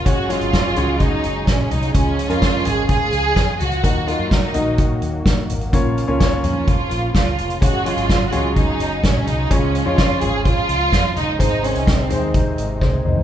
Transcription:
Already playing: analog synth pad C#3
0.05 fingered electric bass F#1, analog synth pad F#3 G#3 G#4, grand piano G#3 C#4 F#4 C#5, violin section F#4, kick, closed hi-hat
0.29 grand piano F#3 G#3 C#4 C#5, violin section F4, closed hi-hat
0.41 fingered electric bass G#1, closed hi-hat
0.53 kick, snare, closed hi-hat
0.76 fingered electric bass C#2, grand piano G#3 C#4 F#4 C#5, closed hi-hat, floor tom
1.00 violin section D#4, kick, closed hi-hat
1.24 fingered electric bass F#1, closed hi-hat
1.47 fingered electric bass A#1, violin section C#4, kick, snare, closed hi-hat
1.70 fingered electric bass C2, violin section D#4, closed hi-hat, floor tom
1.82 closed hi-hat
1.94 fingered electric bass C#2, grand piano C#3 G#3 C#4 F4 C#5, analog synth pad F3 F4, violin section C#4, kick, closed hi-hat
2.19 closed hi-hat
2.29 fingered electric bass F2, grand piano G#3 C#4 F4 A#4, violin section F4, closed hi-hat
2.41 grand piano G#3 C#4 F4 C#5, kick, snare, closed hi-hat
2.65 fingered electric bass G#1, violin section G#4, closed hi-hat, floor tom
2.89 violin section G#4, kick, closed hi-hat
3.12 fingered electric bass C#2, closed hi-hat
3.36 fingered electric bass F2, kick, snare, closed hi-hat
3.60 fingered electric bass C#2, violin section F#4, closed hi-hat, floor tom
3.72 closed hi-hat
3.83 fingered electric bass D#2, grand piano D#3 A#3 D#4 F#4 D#5, analog synth pad D#3 F#3 A#3 F#4, kick, closed hi-hat
4.07 grand piano A#3 D#4 F#4 D#5, violin section F4, closed hi-hat
4.19 fingered electric bass F#2
4.31 violin section D#4, kick, snare, closed hi-hat
4.54 fingered electric bass A#1, grand piano A#3 D#4 F#4 D#5, closed hi-hat, floor tom
4.78 kick, closed hi-hat
5.02 fingered electric bass D#2, closed hi-hat
5.26 fingered electric bass F#2, kick, snare, closed hi-hat
5.48 fingered electric bass G#1, closed hi-hat, floor tom
5.61 closed hi-hat
5.73 fingered electric bass A#1, grand piano A#2 A#3 C#4 F4 C#5, analog synth pad C#3 F3 F4, kick, closed hi-hat
5.98 closed hi-hat
6.08 fingered electric bass C#2, grand piano A#3 C#4 F4 C#5
6.20 grand piano A#3 C#4 F4 C#5, kick, snare, closed hi-hat
6.43 fingered electric bass F2, violin section C#4, closed hi-hat, floor tom
6.68 violin section F4, kick, closed hi-hat
6.91 fingered electric bass A#1, closed hi-hat
7.15 fingered electric bass C#2, violin section F4, kick, snare, closed hi-hat
7.38 fingered electric bass F1, closed hi-hat
7.50 closed hi-hat
7.61 fingered electric bass F#1, analog synth pad F#3 G#3 G#4, grand piano G#3 C#4 F#4 C#5, violin section F#4, kick, closed hi-hat
7.85 grand piano F#3 G#3 C#4 C#5, violin section F4, closed hi-hat
7.97 fingered electric bass G#1, closed hi-hat
8.09 kick, snare, closed hi-hat
8.27 violin section F#4
8.32 fingered electric bass C#2, grand piano G#3 C#4 F#4 C#5, violin section F4, closed hi-hat, floor tom
8.56 violin section D#4, kick, closed hi-hat
8.80 fingered electric bass F#1, closed hi-hat
9.03 fingered electric bass A#1, violin section C#4, kick, snare, closed hi-hat
9.27 fingered electric bass C2, violin section D#4, closed hi-hat, floor tom
9.50 fingered electric bass C#2, grand piano C#3 G#3 C#4 F4 C#5, analog synth pad F3 F4, violin section C#4, kick, closed hi-hat
9.75 closed hi-hat
9.86 fingered electric bass F2, grand piano G#3 C#4 F4 C#5, violin section F4
9.98 grand piano G#3 C#4 F4 C#5, kick, snare, closed hi-hat
10.21 fingered electric bass G#1, violin section G#4, closed hi-hat, floor tom
10.45 violin section F4, kick, closed hi-hat
10.69 fingered electric bass C#2, closed hi-hat
10.92 fingered electric bass F2, kick, snare, closed hi-hat
11.16 fingered electric bass F#1, violin section D#4, closed hi-hat, floor tom
11.39 fingered electric bass G#1, grand piano G#2 G#3 C4 D#4 C5, analog synth pad C3 D#3 D#4, violin section D#4, kick, closed hi-hat
11.63 grand piano G#3 C4 D#4 C5, violin section C#4, closed hi-hat
11.75 fingered electric bass C2, closed hi-hat
11.87 violin section C4, kick, snare, closed hi-hat
12.10 fingered electric bass D#2, grand piano G#3 C4 D#4 C5, closed hi-hat, floor tom
12.34 kick, closed hi-hat
12.58 fingered electric bass G#1, closed hi-hat
12.81 fingered electric bass C2, grand piano G#4 C5, kick, snare
12.93 high tom
13.05 fingered electric bass C2, grand piano C5 D#5, mid tom
13.17 floor tom

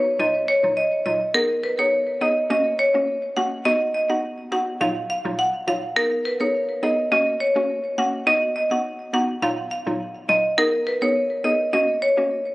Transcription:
Already playing: synth pluck B3 D#4 F#4
0.19 synth pluck A#2 F#3 D#4 F4, marimba D#5
0.48 marimba C#5
0.63 synth pluck A#2 F#3 D#4 F4
0.77 marimba D#5
1.06 synth pluck A#2 F#3 D#4 F4, marimba D#5
1.34 synth pluck B3 D#4 G#4, marimba A#4
1.64 marimba B4
1.79 synth pluck B3 D#4 G#4, marimba C#5
2.21 synth pluck B3 D#4 G#4, marimba D#5
2.50 synth pluck A#3 C#4 F#4, marimba D#5
2.79 marimba C#5
2.94 synth pluck A#3 C#4 F#4
3.37 synth pluck A#3 C#4 F#4, marimba F#5
3.65 synth pluck B3 D#4 F#4, marimba D#5
3.94 marimba D#5
4.09 synth pluck B3 D#4 F#4, marimba F#5
4.52 synth pluck B3 D#4 F#4, marimba F#5
4.81 synth pluck A#2 F#3 D#4 F4, marimba F5
5.10 marimba F5
5.25 synth pluck A#2 F#3 D#4 F4
5.39 marimba F#5
5.67 synth pluck A#2 F#3 D#4 F4, marimba F5
5.96 synth pluck B3 D#4 G#4, marimba A#4
6.25 marimba B4
6.40 synth pluck B3 D#4 G#4, marimba C#5
6.83 synth pluck B3 D#4 G#4, marimba D#5
7.12 synth pluck A#3 C#4 F#4, marimba D#5
7.40 marimba C#5
7.56 synth pluck A#3 C#4 F#4
7.98 synth pluck A#3 C#4 F#4, marimba F#5
8.27 synth pluck B3 D#4 F#4, marimba D#5
8.56 marimba D#5
8.71 synth pluck B3 D#4 F#4, marimba F#5
9.13 synth pluck B3 D#4 F#4, marimba F#5
9.42 synth pluck A#2 F#3 D#4 F4, marimba F5
9.71 marimba F5
9.86 synth pluck A#2 F#3 D#4 F4
10.29 synth pluck A#2 F#3 D#4 F4, marimba D#5
10.58 synth pluck B3 D#4 G#4, marimba A#4
10.87 marimba B4
11.02 synth pluck B3 D#4 G#4, marimba C#5
11.44 synth pluck B3 D#4 G#4, marimba D#5
11.73 synth pluck A#3 C#4 F#4, marimba D#5
12.02 marimba C#5
12.17 synth pluck A#3 C#4 F#4

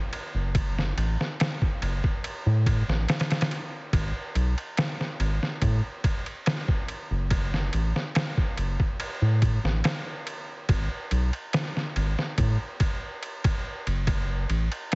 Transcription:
0.13 ride
0.35 analog synth bass F#1
0.55 kick, ride
0.79 snare
0.97 analog synth bass A1, ride
1.21 snare
1.40 snare, ride
1.62 kick
1.82 analog synth bass F#1, ride
2.04 kick
2.24 ride
2.46 analog synth bass A2
2.66 kick, ride
2.88 analog synth bass A1, snare
3.08 snare, ride
3.20 snare, ride
3.30 snare, ride
3.41 snare, ride
3.51 ride
3.93 analog synth bass G#1, kick, ride
4.35 analog synth bass B1, ride
4.58 ride
4.77 snare, ride
5.01 snare
5.20 analog synth bass G#1, ride
5.43 snare
5.62 analog synth bass A2, kick, ride
6.04 kick, ride
6.26 ride
6.46 snare, ride
6.68 kick
6.88 ride
7.11 analog synth bass F#1
7.30 kick, ride
7.54 snare
7.73 analog synth bass A1, ride
7.96 snare
8.15 snare, ride
8.37 kick
8.57 analog synth bass F#1, ride
8.80 kick
9.00 ride
9.22 analog synth bass A2
9.42 kick, ride
9.64 analog synth bass A1, snare
9.84 snare, ride
10.27 ride
10.69 analog synth bass G#1, kick, ride
11.11 analog synth bass B1, ride
11.33 ride
11.53 snare, ride
11.77 snare
11.96 analog synth bass G#1, ride
12.19 snare
12.38 analog synth bass A2, kick, ride
12.80 kick, ride
13.23 ride
13.44 kick, ride
13.87 analog synth bass F#1, ride
14.07 kick, ride
14.49 analog synth bass A1, ride
14.72 ride
14.92 ride

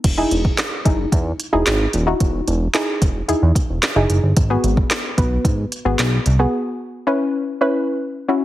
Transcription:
0.04 analog synth bass E1, kick, closed hi-hat, crash
0.17 synth pluck D#4 E4 G#4
0.31 analog synth bass E1, closed hi-hat
0.45 kick
0.58 snare, clap, closed hi-hat
0.85 analog synth bass F#1, synth pluck D#4 E4 G#4, kick, closed hi-hat
1.12 analog synth bass E2, kick, closed hi-hat
1.40 closed hi-hat
1.53 analog synth bass E1, synth pluck D#4 E4 G#4
1.66 analog synth bass G#1, snare, clap, closed hi-hat
1.93 analog synth bass D#1, closed hi-hat
2.07 synth pluck D#4 E4 F#4
2.20 analog synth bass E1, kick, closed hi-hat
2.48 analog synth bass E1, closed hi-hat
2.74 synth pluck D#4 E4 G#4, snare, clap, closed hi-hat
3.02 analog synth bass E1, kick, closed hi-hat
3.28 analog synth bass E2, synth pluck D#4 E4 G#4, closed hi-hat
3.42 analog synth bass E2
3.55 kick, closed hi-hat
3.69 analog synth bass E1
3.83 snare, clap, closed hi-hat
3.96 analog synth bass F#1, synth pluck D#4 E4 G#4
4.10 analog synth bass F#1, closed hi-hat
4.23 analog synth bass G1
4.37 analog synth bass G#1, kick, closed hi-hat
4.50 synth pluck B3 F#4 G#4
4.64 analog synth bass G#1, closed hi-hat
4.77 kick
4.91 snare, clap, closed hi-hat
5.18 analog synth bass B1, synth pluck B3 F#4 B4, kick, closed hi-hat
5.45 analog synth bass G#2, kick, closed hi-hat
5.72 closed hi-hat
5.85 analog synth bass G#1, synth pluck B3 F#4 G#4
5.99 analog synth bass B1, snare, clap, closed hi-hat
6.26 analog synth bass C2, closed hi-hat
6.39 synth pluck B3 F#4 G#4
7.07 synth pluck C#4 E4 B4
7.61 synth pluck C#4 E4 B4
8.28 synth pluck C#4 E4 F#4

